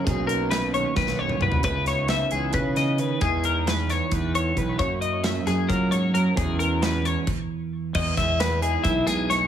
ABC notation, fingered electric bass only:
X:1
M:7/8
L:1/8
Q:1/4=133
K:Elyd
V:1 name="Fingered electric bass" clef=bass
B,,,4 B,,,2 =C,, | C,,3 C,, C,3 | E,,4 E,,2 B,,, | F,,3 F,, F,3 |
E,,4 z3 | E,, E,,3 B,,,3 |]